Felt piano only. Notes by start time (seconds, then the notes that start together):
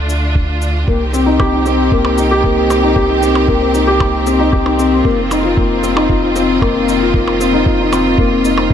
0.88 A#3
1.13 C4
1.26 D#4
1.39 G4
1.53 D#4
1.66 C4
1.92 A#3
2.05 C4
2.18 D#4
2.31 G4
2.44 A#3
2.70 C4
2.83 D#4
2.96 G4
3.09 D#4
3.22 C4
3.48 A#3
3.61 C4
3.74 D#4
3.87 G4
4.00 A#3
4.26 C4
4.39 D#4
4.52 G4
4.66 D#4
4.79 C4
5.05 A#3
5.18 C4
5.31 D#4
5.43 F4
5.57 A#3
5.83 C4
5.96 D#4
6.09 F4
6.23 D#4
6.36 C4
6.61 A#3
6.75 C4
6.88 D#4
7.01 F4
7.14 A#3
7.40 C4
7.53 D#4
7.66 F4
7.80 D#4
7.92 C4
8.19 A#3
8.31 C4
8.45 D#4
8.58 C4